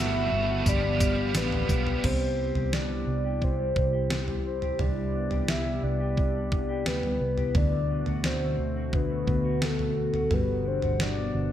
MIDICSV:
0, 0, Header, 1, 7, 480
1, 0, Start_track
1, 0, Tempo, 689655
1, 1417, Time_signature, 4, 2, 24, 8
1, 8020, End_track
2, 0, Start_track
2, 0, Title_t, "Soft synth lead"
2, 0, Program_c, 0, 80
2, 0, Note_on_c, 0, 76, 115
2, 477, Note_on_c, 0, 74, 90
2, 488, Note_off_c, 0, 76, 0
2, 947, Note_off_c, 0, 74, 0
2, 954, Note_on_c, 0, 71, 99
2, 1429, Note_on_c, 0, 72, 101
2, 1440, Note_off_c, 0, 71, 0
2, 1904, Note_on_c, 0, 74, 99
2, 1915, Note_off_c, 0, 72, 0
2, 2394, Note_on_c, 0, 72, 104
2, 2405, Note_off_c, 0, 74, 0
2, 2862, Note_off_c, 0, 72, 0
2, 2866, Note_on_c, 0, 72, 89
2, 3085, Note_off_c, 0, 72, 0
2, 3107, Note_on_c, 0, 72, 87
2, 3345, Note_on_c, 0, 74, 101
2, 3355, Note_off_c, 0, 72, 0
2, 3822, Note_on_c, 0, 76, 95
2, 3832, Note_off_c, 0, 74, 0
2, 4060, Note_on_c, 0, 74, 101
2, 4070, Note_off_c, 0, 76, 0
2, 4783, Note_on_c, 0, 71, 87
2, 4793, Note_off_c, 0, 74, 0
2, 5258, Note_off_c, 0, 71, 0
2, 5263, Note_on_c, 0, 74, 103
2, 5742, Note_on_c, 0, 72, 89
2, 5753, Note_off_c, 0, 74, 0
2, 6232, Note_on_c, 0, 71, 101
2, 6242, Note_off_c, 0, 72, 0
2, 6714, Note_on_c, 0, 69, 83
2, 6725, Note_off_c, 0, 71, 0
2, 7195, Note_on_c, 0, 71, 92
2, 7205, Note_off_c, 0, 69, 0
2, 7431, Note_on_c, 0, 72, 82
2, 7441, Note_off_c, 0, 71, 0
2, 7664, Note_off_c, 0, 72, 0
2, 7674, Note_on_c, 0, 74, 92
2, 8020, Note_off_c, 0, 74, 0
2, 8020, End_track
3, 0, Start_track
3, 0, Title_t, "Ambient pad"
3, 0, Program_c, 1, 92
3, 0, Note_on_c, 1, 55, 73
3, 0, Note_on_c, 1, 78, 70
3, 0, Note_on_c, 1, 81, 74
3, 0, Note_on_c, 1, 83, 85
3, 431, Note_off_c, 1, 81, 0
3, 450, Note_off_c, 1, 78, 0
3, 450, Note_off_c, 1, 83, 0
3, 467, Note_on_c, 1, 74, 62
3, 468, Note_on_c, 1, 83, 78
3, 469, Note_on_c, 1, 77, 64
3, 1400, Note_off_c, 1, 55, 0
3, 1412, Note_off_c, 1, 74, 0
3, 1413, Note_off_c, 1, 83, 0
3, 1414, Note_off_c, 1, 77, 0
3, 1416, Note_on_c, 1, 48, 69
3, 1416, Note_on_c, 1, 55, 65
3, 1420, Note_on_c, 1, 67, 78
3, 1421, Note_on_c, 1, 64, 63
3, 5229, Note_off_c, 1, 48, 0
3, 5229, Note_off_c, 1, 55, 0
3, 5231, Note_off_c, 1, 64, 0
3, 5231, Note_off_c, 1, 67, 0
3, 5253, Note_on_c, 1, 50, 70
3, 5253, Note_on_c, 1, 57, 62
3, 5253, Note_on_c, 1, 66, 82
3, 5254, Note_on_c, 1, 47, 62
3, 7156, Note_off_c, 1, 47, 0
3, 7156, Note_off_c, 1, 57, 0
3, 7182, Note_on_c, 1, 47, 63
3, 7182, Note_on_c, 1, 55, 64
3, 8020, Note_off_c, 1, 47, 0
3, 8020, Note_off_c, 1, 50, 0
3, 8020, Note_off_c, 1, 55, 0
3, 8020, Note_off_c, 1, 66, 0
3, 8020, End_track
4, 0, Start_track
4, 0, Title_t, "Clean electric guitar"
4, 0, Program_c, 2, 27
4, 0, Note_on_c, 2, 50, 82
4, 0, Note_on_c, 2, 55, 87
4, 0, Note_on_c, 2, 57, 60
4, 0, Note_on_c, 2, 59, 58
4, 0, Note_on_c, 2, 66, 62
4, 86, Note_off_c, 2, 66, 0
4, 95, Note_on_c, 2, 66, 61
4, 214, Note_off_c, 2, 59, 0
4, 216, Note_on_c, 2, 59, 65
4, 325, Note_off_c, 2, 66, 0
4, 334, Note_on_c, 2, 66, 69
4, 455, Note_off_c, 2, 66, 0
4, 455, Note_on_c, 2, 43, 75
4, 459, Note_on_c, 2, 67, 68
4, 506, Note_off_c, 2, 57, 0
4, 572, Note_off_c, 2, 59, 0
4, 575, Note_on_c, 2, 59, 60
4, 693, Note_off_c, 2, 55, 0
4, 693, Note_on_c, 2, 55, 65
4, 812, Note_off_c, 2, 67, 0
4, 815, Note_on_c, 2, 67, 66
4, 934, Note_off_c, 2, 59, 0
4, 937, Note_on_c, 2, 59, 59
4, 975, Note_off_c, 2, 50, 0
4, 1049, Note_off_c, 2, 67, 0
4, 1052, Note_on_c, 2, 67, 66
4, 1170, Note_off_c, 2, 59, 0
4, 1172, Note_on_c, 2, 59, 63
4, 1289, Note_off_c, 2, 67, 0
4, 1291, Note_on_c, 2, 67, 69
4, 1412, Note_on_c, 2, 48, 70
4, 1464, Note_off_c, 2, 43, 0
4, 1534, Note_off_c, 2, 55, 0
4, 1536, Note_on_c, 2, 55, 50
4, 1775, Note_off_c, 2, 67, 0
4, 1778, Note_on_c, 2, 67, 49
4, 1894, Note_off_c, 2, 59, 0
4, 1896, Note_on_c, 2, 59, 53
4, 2010, Note_off_c, 2, 55, 0
4, 2018, Note_on_c, 2, 55, 49
4, 2252, Note_off_c, 2, 67, 0
4, 2260, Note_on_c, 2, 67, 57
4, 2372, Note_off_c, 2, 48, 0
4, 2381, Note_on_c, 2, 48, 65
4, 2401, Note_off_c, 2, 59, 0
4, 2491, Note_off_c, 2, 55, 0
4, 2500, Note_on_c, 2, 55, 51
4, 2727, Note_off_c, 2, 67, 0
4, 2735, Note_on_c, 2, 67, 56
4, 2968, Note_off_c, 2, 55, 0
4, 2976, Note_on_c, 2, 55, 54
4, 3207, Note_off_c, 2, 67, 0
4, 3215, Note_on_c, 2, 67, 54
4, 3329, Note_off_c, 2, 48, 0
4, 3337, Note_on_c, 2, 48, 69
4, 3450, Note_off_c, 2, 55, 0
4, 3458, Note_on_c, 2, 55, 49
4, 3575, Note_on_c, 2, 59, 50
4, 3686, Note_off_c, 2, 67, 0
4, 3694, Note_on_c, 2, 67, 54
4, 3811, Note_off_c, 2, 59, 0
4, 3814, Note_on_c, 2, 59, 49
4, 3927, Note_off_c, 2, 55, 0
4, 3936, Note_on_c, 2, 55, 48
4, 4054, Note_off_c, 2, 59, 0
4, 4057, Note_on_c, 2, 59, 55
4, 4169, Note_off_c, 2, 67, 0
4, 4178, Note_on_c, 2, 67, 57
4, 4289, Note_off_c, 2, 48, 0
4, 4298, Note_on_c, 2, 48, 69
4, 4409, Note_off_c, 2, 55, 0
4, 4417, Note_on_c, 2, 55, 49
4, 4533, Note_off_c, 2, 59, 0
4, 4536, Note_on_c, 2, 59, 54
4, 4646, Note_off_c, 2, 67, 0
4, 4654, Note_on_c, 2, 67, 58
4, 4773, Note_off_c, 2, 59, 0
4, 4775, Note_on_c, 2, 59, 53
4, 4889, Note_off_c, 2, 55, 0
4, 4897, Note_on_c, 2, 55, 52
4, 5015, Note_off_c, 2, 59, 0
4, 5018, Note_on_c, 2, 59, 53
4, 5127, Note_off_c, 2, 67, 0
4, 5135, Note_on_c, 2, 67, 54
4, 5253, Note_off_c, 2, 48, 0
4, 5255, Note_on_c, 2, 50, 71
4, 5304, Note_off_c, 2, 67, 0
4, 5305, Note_off_c, 2, 55, 0
4, 5375, Note_on_c, 2, 57, 50
4, 5396, Note_off_c, 2, 59, 0
4, 5493, Note_on_c, 2, 59, 53
4, 5615, Note_on_c, 2, 66, 56
4, 5845, Note_off_c, 2, 57, 0
4, 5853, Note_on_c, 2, 57, 50
4, 5874, Note_off_c, 2, 59, 0
4, 6091, Note_off_c, 2, 66, 0
4, 6094, Note_on_c, 2, 66, 57
4, 6209, Note_off_c, 2, 50, 0
4, 6211, Note_on_c, 2, 50, 69
4, 6322, Note_off_c, 2, 57, 0
4, 6330, Note_on_c, 2, 57, 52
4, 6451, Note_on_c, 2, 59, 52
4, 6568, Note_off_c, 2, 66, 0
4, 6571, Note_on_c, 2, 66, 57
4, 6688, Note_off_c, 2, 59, 0
4, 6691, Note_on_c, 2, 59, 55
4, 6805, Note_off_c, 2, 57, 0
4, 6814, Note_on_c, 2, 57, 53
4, 6929, Note_off_c, 2, 59, 0
4, 6931, Note_on_c, 2, 59, 53
4, 7049, Note_off_c, 2, 66, 0
4, 7052, Note_on_c, 2, 66, 58
4, 7172, Note_on_c, 2, 55, 72
4, 7223, Note_off_c, 2, 57, 0
4, 7409, Note_off_c, 2, 59, 0
4, 7412, Note_on_c, 2, 62, 50
4, 7529, Note_off_c, 2, 66, 0
4, 7532, Note_on_c, 2, 66, 52
4, 7644, Note_off_c, 2, 62, 0
4, 7652, Note_on_c, 2, 62, 52
4, 7770, Note_on_c, 2, 59, 48
4, 7885, Note_off_c, 2, 62, 0
4, 7893, Note_on_c, 2, 62, 53
4, 8002, Note_off_c, 2, 66, 0
4, 8020, Note_off_c, 2, 50, 0
4, 8020, Note_off_c, 2, 55, 0
4, 8020, Note_off_c, 2, 59, 0
4, 8020, Note_off_c, 2, 62, 0
4, 8020, End_track
5, 0, Start_track
5, 0, Title_t, "Overdriven electric guitar"
5, 0, Program_c, 3, 29
5, 0, Note_on_c, 3, 55, 81
5, 0, Note_on_c, 3, 57, 81
5, 0, Note_on_c, 3, 59, 87
5, 0, Note_on_c, 3, 66, 94
5, 195, Note_off_c, 3, 66, 0
5, 204, Note_on_c, 3, 66, 62
5, 213, Note_off_c, 3, 55, 0
5, 215, Note_off_c, 3, 59, 0
5, 218, Note_off_c, 3, 57, 0
5, 223, Note_on_c, 3, 59, 56
5, 240, Note_on_c, 3, 57, 52
5, 448, Note_on_c, 3, 53, 60
5, 451, Note_off_c, 3, 66, 0
5, 456, Note_off_c, 3, 57, 0
5, 459, Note_on_c, 3, 55, 60
5, 460, Note_off_c, 3, 59, 0
5, 471, Note_on_c, 3, 59, 68
5, 481, Note_on_c, 3, 67, 67
5, 679, Note_off_c, 3, 67, 0
5, 687, Note_on_c, 3, 67, 54
5, 693, Note_off_c, 3, 53, 0
5, 693, Note_off_c, 3, 59, 0
5, 698, Note_off_c, 3, 55, 0
5, 701, Note_on_c, 3, 59, 47
5, 711, Note_on_c, 3, 55, 52
5, 721, Note_on_c, 3, 53, 44
5, 931, Note_on_c, 3, 43, 79
5, 932, Note_off_c, 3, 67, 0
5, 936, Note_off_c, 3, 53, 0
5, 937, Note_off_c, 3, 55, 0
5, 938, Note_on_c, 3, 50, 78
5, 939, Note_off_c, 3, 59, 0
5, 944, Note_on_c, 3, 53, 83
5, 946, Note_on_c, 3, 55, 84
5, 952, Note_on_c, 3, 59, 81
5, 955, Note_on_c, 3, 67, 86
5, 1162, Note_off_c, 3, 67, 0
5, 1171, Note_on_c, 3, 67, 62
5, 1174, Note_off_c, 3, 43, 0
5, 1178, Note_off_c, 3, 50, 0
5, 1178, Note_off_c, 3, 59, 0
5, 1181, Note_off_c, 3, 53, 0
5, 1181, Note_off_c, 3, 55, 0
5, 1187, Note_on_c, 3, 59, 61
5, 1195, Note_on_c, 3, 55, 50
5, 1207, Note_on_c, 3, 53, 49
5, 1414, Note_off_c, 3, 67, 0
5, 1422, Note_off_c, 3, 59, 0
5, 1426, Note_off_c, 3, 55, 0
5, 1432, Note_off_c, 3, 53, 0
5, 8020, End_track
6, 0, Start_track
6, 0, Title_t, "Fingered electric bass"
6, 0, Program_c, 4, 33
6, 0, Note_on_c, 4, 31, 92
6, 201, Note_off_c, 4, 31, 0
6, 222, Note_on_c, 4, 31, 92
6, 448, Note_off_c, 4, 31, 0
6, 461, Note_on_c, 4, 31, 98
6, 915, Note_off_c, 4, 31, 0
6, 940, Note_on_c, 4, 33, 93
6, 1167, Note_off_c, 4, 33, 0
6, 1178, Note_on_c, 4, 35, 84
6, 1406, Note_off_c, 4, 35, 0
6, 1419, Note_on_c, 4, 36, 86
6, 1760, Note_off_c, 4, 36, 0
6, 1777, Note_on_c, 4, 36, 73
6, 2119, Note_off_c, 4, 36, 0
6, 2137, Note_on_c, 4, 36, 77
6, 2593, Note_off_c, 4, 36, 0
6, 2619, Note_on_c, 4, 36, 76
6, 3310, Note_off_c, 4, 36, 0
6, 3339, Note_on_c, 4, 36, 85
6, 3680, Note_off_c, 4, 36, 0
6, 3699, Note_on_c, 4, 36, 76
6, 4040, Note_off_c, 4, 36, 0
6, 4058, Note_on_c, 4, 36, 82
6, 4750, Note_off_c, 4, 36, 0
6, 4775, Note_on_c, 4, 38, 67
6, 5004, Note_off_c, 4, 38, 0
6, 5016, Note_on_c, 4, 36, 78
6, 5244, Note_off_c, 4, 36, 0
6, 5255, Note_on_c, 4, 38, 88
6, 5598, Note_off_c, 4, 38, 0
6, 5617, Note_on_c, 4, 38, 79
6, 5959, Note_off_c, 4, 38, 0
6, 5976, Note_on_c, 4, 38, 77
6, 6433, Note_off_c, 4, 38, 0
6, 6455, Note_on_c, 4, 38, 77
6, 7148, Note_off_c, 4, 38, 0
6, 7176, Note_on_c, 4, 31, 84
6, 7519, Note_off_c, 4, 31, 0
6, 7538, Note_on_c, 4, 31, 75
6, 7880, Note_off_c, 4, 31, 0
6, 7898, Note_on_c, 4, 31, 88
6, 8020, Note_off_c, 4, 31, 0
6, 8020, End_track
7, 0, Start_track
7, 0, Title_t, "Drums"
7, 459, Note_on_c, 9, 36, 92
7, 460, Note_on_c, 9, 43, 61
7, 460, Note_on_c, 9, 54, 62
7, 529, Note_off_c, 9, 36, 0
7, 530, Note_off_c, 9, 43, 0
7, 530, Note_off_c, 9, 54, 0
7, 699, Note_on_c, 9, 36, 101
7, 701, Note_on_c, 9, 54, 79
7, 769, Note_off_c, 9, 36, 0
7, 770, Note_off_c, 9, 54, 0
7, 935, Note_on_c, 9, 54, 97
7, 938, Note_on_c, 9, 38, 118
7, 1005, Note_off_c, 9, 54, 0
7, 1007, Note_off_c, 9, 38, 0
7, 1061, Note_on_c, 9, 43, 63
7, 1131, Note_off_c, 9, 43, 0
7, 1177, Note_on_c, 9, 36, 97
7, 1180, Note_on_c, 9, 54, 65
7, 1246, Note_off_c, 9, 36, 0
7, 1249, Note_off_c, 9, 54, 0
7, 1299, Note_on_c, 9, 43, 58
7, 1369, Note_off_c, 9, 43, 0
7, 1418, Note_on_c, 9, 36, 91
7, 1419, Note_on_c, 9, 43, 92
7, 1419, Note_on_c, 9, 49, 67
7, 1488, Note_off_c, 9, 36, 0
7, 1489, Note_off_c, 9, 43, 0
7, 1489, Note_off_c, 9, 49, 0
7, 1777, Note_on_c, 9, 43, 54
7, 1847, Note_off_c, 9, 43, 0
7, 1900, Note_on_c, 9, 38, 90
7, 1970, Note_off_c, 9, 38, 0
7, 2378, Note_on_c, 9, 36, 73
7, 2448, Note_off_c, 9, 36, 0
7, 2618, Note_on_c, 9, 36, 86
7, 2687, Note_off_c, 9, 36, 0
7, 2857, Note_on_c, 9, 38, 95
7, 2926, Note_off_c, 9, 38, 0
7, 2978, Note_on_c, 9, 43, 50
7, 3048, Note_off_c, 9, 43, 0
7, 3216, Note_on_c, 9, 43, 50
7, 3286, Note_off_c, 9, 43, 0
7, 3335, Note_on_c, 9, 43, 86
7, 3405, Note_off_c, 9, 43, 0
7, 3694, Note_on_c, 9, 43, 55
7, 3764, Note_off_c, 9, 43, 0
7, 3817, Note_on_c, 9, 38, 92
7, 3887, Note_off_c, 9, 38, 0
7, 4297, Note_on_c, 9, 36, 80
7, 4366, Note_off_c, 9, 36, 0
7, 4537, Note_on_c, 9, 36, 88
7, 4607, Note_off_c, 9, 36, 0
7, 4775, Note_on_c, 9, 38, 99
7, 4845, Note_off_c, 9, 38, 0
7, 4895, Note_on_c, 9, 43, 51
7, 4964, Note_off_c, 9, 43, 0
7, 5133, Note_on_c, 9, 43, 52
7, 5203, Note_off_c, 9, 43, 0
7, 5253, Note_on_c, 9, 43, 94
7, 5255, Note_on_c, 9, 36, 94
7, 5323, Note_off_c, 9, 43, 0
7, 5324, Note_off_c, 9, 36, 0
7, 5611, Note_on_c, 9, 43, 53
7, 5680, Note_off_c, 9, 43, 0
7, 5735, Note_on_c, 9, 38, 93
7, 5804, Note_off_c, 9, 38, 0
7, 6215, Note_on_c, 9, 36, 82
7, 6285, Note_off_c, 9, 36, 0
7, 6455, Note_on_c, 9, 36, 81
7, 6525, Note_off_c, 9, 36, 0
7, 6695, Note_on_c, 9, 38, 99
7, 6764, Note_off_c, 9, 38, 0
7, 6815, Note_on_c, 9, 43, 51
7, 6885, Note_off_c, 9, 43, 0
7, 7055, Note_on_c, 9, 43, 53
7, 7125, Note_off_c, 9, 43, 0
7, 7174, Note_on_c, 9, 43, 90
7, 7244, Note_off_c, 9, 43, 0
7, 7533, Note_on_c, 9, 43, 56
7, 7603, Note_off_c, 9, 43, 0
7, 7655, Note_on_c, 9, 38, 89
7, 7725, Note_off_c, 9, 38, 0
7, 8020, End_track
0, 0, End_of_file